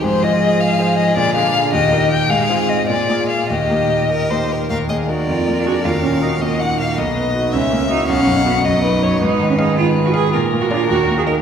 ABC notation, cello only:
X:1
M:6/8
L:1/16
Q:3/8=106
K:Eb
V:1 name="Cello"
F,12 | D,6 B,,6 | A,,6 B,,6 | B,,8- B,,2 z2 |
[K:Ebm] z6 F4 G2 | F2 D2 E2 B,6 | z6 D4 E2 | D4 =B,2 ^F,6 |
E3 D E2 F3 G A2 | F3 G F2 G3 A B2 |]